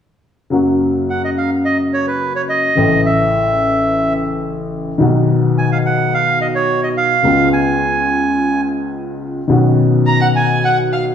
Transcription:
0.50 2.66 F#2 soft
0.50 2.65 C#3 soft
0.50 2.66 F#3 soft
0.50 2.66 A#3 soft
0.50 2.67 F#4 soft
1.10 1.22 F#5 medium
1.24 1.30 D#5 medium
1.38 1.50 F5 medium
1.65 1.77 D#5 medium
1.94 2.06 C#5 medium
2.08 2.33 B4 medium
2.36 2.42 C#5 medium
2.49 3.01 D#5 medium
2.75 4.90 A1 medium
2.75 4.90 A2 medium
2.75 4.89 C#3 soft
2.75 4.89 E3 soft
2.75 4.90 A3 soft
2.79 4.91 E4 soft
3.06 4.13 E5 medium
4.98 7.13 B1 medium
4.98 7.13 B2 medium
4.98 7.12 D#3 medium
4.98 7.13 F#3 soft
4.98 7.13 B3 soft
5.02 7.14 F#4 medium
5.58 5.70 G#5 medium
5.72 5.78 F5 medium
5.86 6.14 F#5 medium
6.14 6.39 F5 medium
6.41 6.47 D#5 medium
6.55 6.81 C#5 medium
6.83 6.89 D#5 medium
6.97 7.49 F5 medium
7.23 9.39 C#2 medium
7.23 9.38 C#3 medium
7.23 9.38 G#3 soft
7.23 9.39 B3 soft
7.23 9.39 F4 medium
7.53 8.61 G#5 medium
9.48 11.15 B1 medium
9.48 11.15 B2 soft
9.48 11.15 D#3 soft
9.48 11.15 B3 soft
9.48 11.15 C#4 soft
9.48 11.15 F#4 medium
10.06 10.20 A#5 medium
10.21 10.27 F#5 medium
10.21 10.28 F#5 medium
10.36 10.62 G#5 medium
10.36 10.64 G#5 medium
10.64 10.77 F#5 medium
10.92 11.05 F5 soft

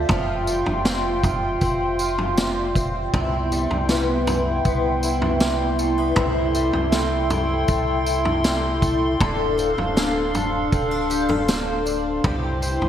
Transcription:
0.00 0.18 A3 medium
0.00 0.86 C4 medium
0.00 0.11 F4 medium
0.00 3.10 E5 medium
0.09 0.64 F1 loud
0.09 3.13 F3 medium
0.09 3.11 F4 medium
0.09 1.23 F4 medium
0.09 3.11 G5 medium
0.09 3.11 C6 medium
0.09 kick loud
0.09 floor tom loud
0.47 2.37 G3 medium
0.47 tambourine medium
0.66 1.58 F1 loud
0.66 floor tom medium
0.85 1.62 C4 medium
0.85 snare loud
0.85 tambourine medium
1.24 1.99 F4 medium
1.24 kick medium
1.24 floor tom medium
1.24 tambourine medium
1.61 3.09 F1 loud
1.61 2.75 C4 medium
1.61 kick medium
1.61 tambourine medium
1.99 3.14 F4 medium
1.99 tambourine medium
2.18 floor tom medium
2.38 3.52 G3 medium
2.38 snare loud
2.38 tambourine loud
2.75 3.89 C4 medium
2.75 kick medium
2.75 tambourine medium
3.14 3.68 C2 loud
3.14 6.16 C3 medium
3.14 6.15 B3 medium
3.14 4.27 E4 medium
3.14 9.18 E4 medium
3.14 6.15 G5 medium
3.14 12.22 C6 medium
3.14 kick loud
3.14 floor tom loud
3.52 5.41 G3 medium
3.52 tambourine medium
3.71 4.62 C2 loud
3.71 floor tom medium
3.89 4.65 B3 medium
3.89 snare medium
3.89 tambourine medium
4.27 5.03 E4 medium
4.27 floor tom medium
4.27 tambourine medium
4.65 6.13 C2 loud
4.65 5.78 B3 medium
4.65 kick medium
4.65 tambourine medium
5.03 6.17 E4 medium
5.03 tambourine medium
5.22 floor tom medium
5.40 6.55 G3 medium
5.40 snare loud
5.40 tambourine medium
5.79 5.98 A3 medium
5.79 tambourine medium
5.98 6.25 B3 soft
6.16 6.71 C2 loud
6.16 9.20 C3 medium
6.16 7.29 E4 medium
6.16 9.18 A4 medium
6.16 9.18 G5 medium
6.16 kick loud
6.16 floor tom loud
6.55 8.44 G3 medium
6.55 tambourine medium
6.73 7.65 C2 loud
6.73 floor tom medium
6.92 7.68 A3 medium
6.92 snare loud
6.92 tambourine medium
7.30 8.06 E4 medium
7.30 floor tom medium
7.30 tambourine medium
7.68 9.17 C2 medium
7.68 8.82 A3 medium
7.68 kick medium
7.68 tambourine medium
8.06 9.29 E4 medium
8.06 tambourine medium
8.25 floor tom medium
8.44 9.29 G3 medium
8.44 snare loud
8.44 tambourine medium
8.82 9.57 A3 medium
8.82 kick medium
8.82 tambourine medium
9.20 9.75 D1 loud
9.20 12.24 D3 loud
9.20 12.22 D4 medium
9.20 10.33 A4 medium
9.20 12.22 A4 medium
9.20 12.22 F5 medium
9.20 kick loud
9.20 floor tom loud
9.58 10.72 C4 medium
9.58 tambourine medium
9.78 10.69 D1 loud
9.78 floor tom medium
9.96 10.72 D4 medium
9.96 snare loud
9.96 tambourine medium
10.34 11.09 A4 medium
10.34 floor tom medium
10.34 tambourine medium
10.72 12.21 D1 medium
10.72 10.91 C4 medium
10.72 kick medium
10.72 tambourine medium
10.91 11.85 D4 medium
11.10 11.29 G4 medium
11.10 tambourine medium
11.29 12.24 A4 medium
11.29 floor tom medium
11.48 12.62 C4 medium
11.48 snare loud
11.48 tambourine medium
11.86 12.32 D4 medium
11.86 tambourine medium
12.24 12.79 C2 loud
12.24 12.89 C3 medium
12.24 12.89 E4 medium
12.24 12.89 G4 medium
12.24 12.89 C5 medium
12.24 12.89 G5 medium
12.24 12.89 C6 medium
12.24 kick loud
12.24 floor tom loud
12.62 12.89 C4 medium
12.62 tambourine medium
12.81 12.89 C2 loud
12.81 floor tom medium

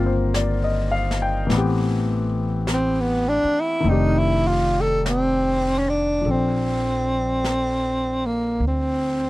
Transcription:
0.00 1.47 G1 medium
0.00 1.52 D3 medium
0.00 1.50 D#3 medium
0.00 1.51 A#3 soft
0.00 1.52 C4 soft
0.00 1.52 F4 medium
0.00 1.53 G4 medium
0.00 0.13 A#4 medium
0.06 0.47 C5 soft
0.34 0.89 D5 medium
0.34 brush sweep soft
0.34 snare medium
0.34 hi-hat pedal medium
0.64 1.13 D#5 medium
0.91 1.29 F5 medium
1.11 snare soft
1.22 1.63 G5 medium
1.47 3.41 A1 medium
1.47 3.84 E3 medium
1.47 3.83 A3 soft
1.47 brush sweep soft
1.47 snare soft
1.51 3.86 B3 medium
1.51 3.85 C4 soft
1.57 3.89 G4 medium
2.67 brush sweep soft
2.67 snare soft
2.67 hi-hat pedal soft
2.73 3.02 C4 medium
3.01 3.30 B3 medium
3.29 3.62 D4 medium
3.44 muted upright bass stroke soft
3.60 3.91 E4 medium
3.80 6.21 F1 medium
3.80 6.23 D#3 medium
3.80 6.25 A3 medium
3.85 6.26 C4 soft
3.85 6.27 D4 medium
3.85 4.20 D#4 medium
3.85 brush sweep soft
3.91 6.28 G4 medium
4.19 4.49 E4 medium
4.47 4.82 F4 medium
4.81 5.04 A4 medium
5.06 5.80 C4 medium
5.06 brush sweep soft
5.06 snare medium
5.06 hi-hat pedal medium
5.78 5.91 C#4 medium
5.89 6.32 D4 medium
6.21 8.58 A#1 medium
6.21 9.30 F3 soft
6.21 brush sweep soft
6.25 9.30 C4 soft
6.25 9.30 A4 soft
6.31 8.27 C4 medium
6.31 9.30 D4 soft
7.44 brush sweep soft
7.44 snare soft
7.44 hi-hat pedal soft
8.25 8.64 A#3 medium
8.60 9.30 D2 medium
8.60 brush sweep soft
8.67 9.30 C4 medium

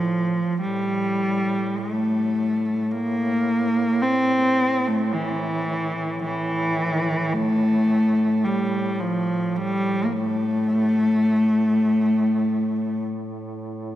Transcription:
0.00 0.43 A2 soft
0.00 0.60 F3 medium
0.60 13.95 A2 soft
0.60 1.79 G3 medium
1.77 2.93 A3 medium
2.91 4.04 A#3 medium
4.02 4.89 C4 medium
4.87 5.15 A3 medium
5.13 6.23 E3 medium
6.24 7.35 E3 medium
7.33 8.46 A3 medium
8.44 9.01 G3 medium
9.00 9.58 F3 medium
9.56 10.06 G3 medium
10.05 10.14 A#3 medium
10.13 13.06 A3 medium

